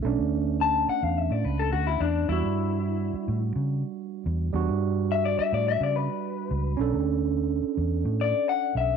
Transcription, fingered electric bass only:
\new Staff \with { instrumentName = "Fingered electric bass" } { \clef bass \time 4/4 \key b \minor \tempo 4 = 107 b,,16 d,4~ d,16 r16 e,8 a,16 cis,8 d,8 e,8 | e,16 g,4~ g,16 r16 a,8 cis8 r8. e,8 | e,16 g,4~ g,16 r16 a,8 cis8 r8. cis,8 | b,,16 d,4~ d,16 r16 e,8 a,8 r8. b,,8 | }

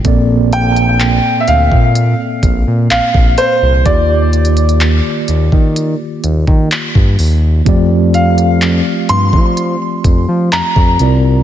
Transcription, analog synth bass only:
\new Staff \with { instrumentName = "Analog synth bass" } { \clef bass \time 4/4 \key f \major \tempo 4 = 63 bes,,4~ bes,,16 r16 d,16 bes,8 r16 bes,,16 bes,16 bes,,16 bes,,16 r16 c,16 | ees,4~ ees,16 r16 ees,16 ees8 r16 ees,16 ees16 r16 g,16 ees,8 | f,4~ f,16 r16 g,16 f8 r16 f,16 f16 f,16 f,16 c,8 | }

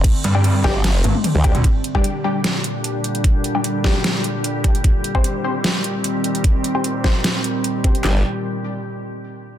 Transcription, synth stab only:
\new Staff \with { instrumentName = "Synth stab" } { \time 4/4 \key g \minor \tempo 4 = 150 r8. <g d' g'>16 r8 <g d' g'>16 r4. r16 <g d' g'>16 r16 | r8. <g d' g'>16 r8 <g d' g'>16 r2 r16 | r8. <g d' g'>16 r8 <g d' g'>16 r4. r16 <g d' g'>16 r16 | r8. <c' g' c''>16 r8 <c' g' c''>16 r2 r16 |
r8. <c' g' c''>16 r8 <c' g' c''>16 r4. r16 <c' g' c''>16 r16 | <g d' g'>8 r2. r8 | }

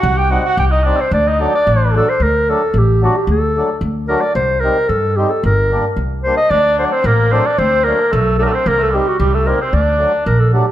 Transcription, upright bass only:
\new Staff \with { instrumentName = "Upright bass" } { \clef bass \time 2/4 \tempo 4 = 112 c,4 c,4 | d,4 a,,4 | d,4 a,,4 | d,4 d,4 |
c,4 g,4 | g,,4 c,4 | d,4 a,,4 | d,4 b,,4 |
c,4 c,4 | d,4 bes,,4 | }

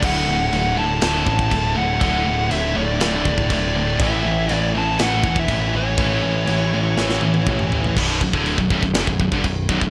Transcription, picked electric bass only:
\new Staff \with { instrumentName = "Picked electric bass" } { \clef bass \time 4/4 \key b \minor \tempo 4 = 121 d,,8 d,,8 d,,8 d,,8 d,,8 a,,8 d,,8 d,,8 | d,,8 d,,8 d,,8 d,,8 d,,8 d,,8 d,,4 | a,,8 a,,8 a,,8 a,,8 a,,8 e,,8 a,,8 a,,8 | a,,8 a,,8 a,,8 a,,8 a,,8 a,,8 a,,4 |
b,,,8 b,,,16 d,,8 b,,,16 b,,,16 b,,,16 fis,,16 b,,,16 b,,,16 g,,16 b,,,8 b,,,16 b,,,16 | }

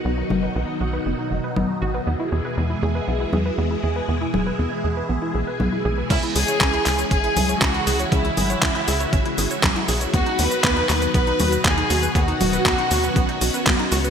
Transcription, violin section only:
\new Staff \with { instrumentName = "Violin section" } { \time 4/4 \key cis \minor \tempo 4 = 119 r1 | r1 | r1 | <e' e''>8 <gis' gis''>4. <gis' gis''>4 <fis' fis''>4 |
<e' e''>2. r4 | <fis' fis''>8 <b' b''>4. <b' b''>4 <gis' gis''>4 | <fis' fis''>2. r4 | }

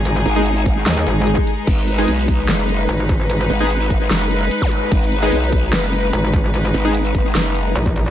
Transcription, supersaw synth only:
\new Staff \with { instrumentName = "Supersaw synth" } { \time 4/4 \key gis \minor \tempo 4 = 148 r8. <gis dis' gis'>16 r2. | r8. <gis dis' gis'>16 r2. | r8. <gis dis' gis'>16 r2. | r8. <gis dis' gis'>16 r2. |
r8. <gis dis' gis'>16 r2. | }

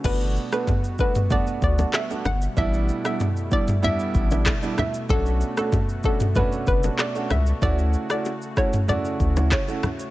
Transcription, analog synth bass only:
\new Staff \with { instrumentName = "Analog synth bass" } { \clef bass \time 4/4 \key g \lydian \tempo 4 = 95 g,,8. r4. r16 d,8 r8 g,,8 | a,,8. r4. r16 a,,8. r8. | b,,8. r4. r16 fis,,8 r8 cis,8 | d,8. r4. r16 d,8. r8. | }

